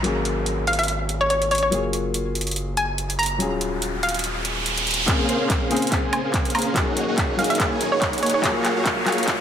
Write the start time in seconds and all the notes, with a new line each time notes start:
Already playing: downlifter
0.02 G#1 F#3 A#3 C#4, closed hi-hat
0.07 G#4
0.25 closed hi-hat
0.46 closed hi-hat
0.67 F5, closed hi-hat
0.73 closed hi-hat
0.79 F5, closed hi-hat
0.83 closed hi-hat
0.88 closed hi-hat
1.09 closed hi-hat
1.21 C#5
1.30 C#5, closed hi-hat
1.42 closed hi-hat
1.51 C#5, closed hi-hat
1.55 closed hi-hat
1.58 closed hi-hat
1.63 C#5
1.70 F#1 F#3 A#3 F4 G#4, closed hi-hat, riser
1.93 closed hi-hat
2.14 closed hi-hat
2.35 closed hi-hat
2.41 closed hi-hat
2.47 closed hi-hat
2.51 closed hi-hat
2.56 closed hi-hat
2.77 G#5, closed hi-hat
2.98 closed hi-hat
3.10 closed hi-hat
3.19 A#5, closed hi-hat
3.23 closed hi-hat
3.26 closed hi-hat
3.38 D#1 F#3 C#4 F4 G#4, closed hi-hat
3.61 closed hi-hat
3.82 closed hi-hat
4.03 F5, closed hi-hat
4.09 closed hi-hat
4.14 closed hi-hat
4.19 closed hi-hat
4.24 closed hi-hat
4.45 closed hi-hat
4.66 closed hi-hat
4.78 closed hi-hat
4.87 closed hi-hat
4.91 closed hi-hat
4.94 closed hi-hat
5.06 C#3 A#3 C4 C#4 G#4 C5 F5, kick, clap, closed hi-hat, riser
5.10 G#4
5.29 closed hi-hat
5.40 A#3 C#4 G#4 C5 F5
5.50 A#3 C#4 G#4 C5 F5, kick, clap, closed hi-hat
5.70 C#3 A#3 C4 C#4 G#4 C5 F5, closed hi-hat
5.77 closed hi-hat
5.82 closed hi-hat
5.87 closed hi-hat
5.92 A#3 C#4 G#4 C5 F5, kick, clap, closed hi-hat
6.03 A#3 C#4 G#4 C5 G#5
6.13 G#5, closed hi-hat, high woodblock
6.24 A#3 C#4 G#4 C5 F5
6.34 A#3 C#4 G#4 C5 F5, kick, clap, closed hi-hat
6.45 closed hi-hat
6.50 closed hi-hat
6.55 A#3 C#4 G#4 C5 F5 A#5, closed hi-hat, high woodblock
6.59 closed hi-hat
6.62 closed hi-hat
6.74 F#3 A#3 C#4 D#4 G#4 C#5 F#5, kick, clap, closed hi-hat
6.97 closed hi-hat
7.08 A#3 D#4 G#4 C#5 F#5
7.18 A#3 D#4 G#4 C#5 F#5, kick, clap, closed hi-hat
7.37 F#3 A#3 C#4 D#4 G#4 C#5 F5 F#5, closed hi-hat
7.41 G#4, closed hi-hat
7.50 F5, closed hi-hat
7.55 closed hi-hat
7.60 A#3 D#4 G#4 C#5 F#5, kick, clap, closed hi-hat
7.71 A#3 D#4 G#4 C#5 G#5
7.81 closed hi-hat
7.92 A#3 D#4 G#4 C#5 F#5
8.02 A#3 D#4 G#4 C#5 F#5, kick, clap, closed hi-hat
8.13 closed hi-hat
8.18 closed hi-hat
8.23 A#3 D#4 G#4 C#5 F#5, closed hi-hat
8.26 closed hi-hat
8.30 closed hi-hat
8.34 C#5
8.41 F#3 A#3 F4 F#4 G#4 C#5 F5, kick, clap, closed hi-hat
8.45 G#4
8.65 clap, closed hi-hat
8.76 A#3 F#4 G#4 C#5 F5
8.86 A#3 F#4 G#4 C#5 F5, kick, clap, closed hi-hat
9.05 F#3 A#3 F4 F#4 G#4 C#5 F5, clap, closed hi-hat
9.12 closed hi-hat
9.18 closed hi-hat
9.23 closed hi-hat
9.27 A#3 F#4 G#4 C#5 F5, kick, clap, closed hi-hat